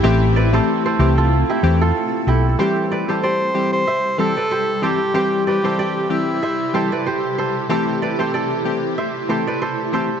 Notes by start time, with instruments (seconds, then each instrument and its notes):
Already playing: ambient pad A3 C4 E4, kora E4 G4 A4
0.03 fingered electric bass A1, synth keys E3 A3 C4 G4, ambient pad A4, kora C5 E5
0.36 kora B4 D5
0.53 synth keys E3 A3 C4 G4, kora A4 C5
0.86 kora A4 C5
0.99 fingered electric bass C2, synth keys E3 A3 C4 G4
1.18 kora F4 A4
1.50 kora E4 G4
1.63 fingered electric bass E2, synth keys E3 A3 C4 G4
1.81 kora F4 A4
2.27 fingered electric bass B1, kora E4 G4
2.59 ambient pad C3 G3 E4 G4, synth keys E3 G3 C4 G4, kora G4 C5
2.92 kora B4 D5
3.08 synth keys E3 G3 C4 G4, kora A4 C5
3.23 kora G4 D5, alto saxophone C5
3.54 synth keys E3 G3 C4 G4
3.73 alto saxophone C5
3.87 kora C5 E5
4.18 synth keys E3 G3 C4 G4, alto saxophone A4, kora A4 C5
4.37 kora B4 D5
4.51 kora G4 C5
4.82 synth keys E3 G3 C4 G4, alto saxophone G4, kora A4 C5
5.14 synth keys E3 G3 C4 G4, kora G4 C5
5.47 alto saxophone G4, kora B4 D5
5.63 synth keys E3 G3 C4 G4, kora A4 C5
5.79 kora G4 D5
6.10 synth keys E3 G3 C4 G4, alto saxophone E4
6.43 kora C5 E5
6.74 synth keys E3 G3 C4 G4, kora A4 C5
6.92 kora B4 D5
7.07 kora G4 C5
7.38 kora A4 C5
7.69 synth keys E3 A3 C4 G4, ambient pad A3, kora A4 C5
8.02 kora B4 D5
8.19 synth keys E3 A3 C4 G4, kora A4 C5
8.34 kora A4 D5
8.65 synth keys E3 A3 C4 G4
8.98 kora C5 E5
9.29 synth keys E3 A3 C4 G4, kora A4 C5
9.47 kora B4 D5
9.62 kora A4 C5
9.92 synth keys E3 A3 C4 G4, kora A4 C5